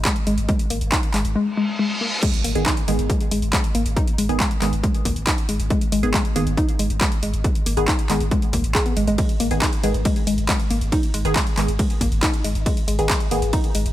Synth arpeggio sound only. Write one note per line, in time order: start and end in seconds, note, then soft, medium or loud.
0.05 0.16 G#3 medium
0.27 0.34 G#3 medium
0.49 0.53 G#3 medium
0.70 0.77 A#3 medium
0.92 0.99 D#4 loud
1.14 1.18 G#3 medium
1.36 1.46 G#3 medium
1.57 1.64 G#3 medium
1.79 1.83 G#3 medium
2.01 2.08 A#3 medium
2.23 2.27 G#3 medium
2.44 2.51 A#3 medium
2.66 2.73 D#4 loud
2.88 2.92 G#3 medium
3.10 3.20 G#3 medium
3.32 3.38 G#3 medium
3.53 3.57 G#3 medium
3.75 3.82 A#3 medium
3.96 4.03 D#4 loud
4.18 4.23 G#3 medium
4.40 4.50 G#3 medium
4.62 4.69 G#3 medium
4.84 4.88 G#3 medium
5.05 5.12 A#3 medium
5.27 5.34 D#4 loud
5.49 5.53 G#3 medium
5.70 5.81 G#3 medium
5.92 5.99 G#3 medium
6.14 6.18 G#3 medium
6.36 6.43 A#3 medium
6.58 6.64 D#4 loud
6.79 6.83 G#3 medium
7.01 7.11 G#3 medium
7.23 7.30 G#3 medium
7.45 7.49 G#3 medium
7.66 7.73 A#3 medium
7.88 7.95 D#4 loud
8.10 8.14 G#3 medium
8.32 8.42 G#3 medium
8.53 8.64 A#3 medium
8.75 8.85 G#4 medium
8.86 8.93 B3 medium
8.97 9.04 G#3 medium
9.08 9.12 G#3 loud
9.18 9.23 G#3 medium
9.40 9.47 A#3 medium
9.62 9.69 D#4 loud
9.84 9.88 G#3 medium
10.05 10.16 G#3 medium
10.27 10.34 G#3 medium
10.49 10.53 G#3 medium
10.71 10.77 A#3 medium
10.92 10.99 D#4 loud
11.14 11.18 G#3 medium
11.36 11.46 G#3 medium
11.57 11.64 G#3 medium
11.79 11.83 G#3 medium
12.01 12.08 A#3 medium
12.23 12.30 D#4 loud
12.44 12.49 G#3 medium
12.66 12.76 G#3 medium
12.88 12.95 G#3 medium
13.10 13.14 G#3 medium
13.31 13.38 A#3 medium
13.53 13.60 D#4 loud
13.75 13.79 G#3 medium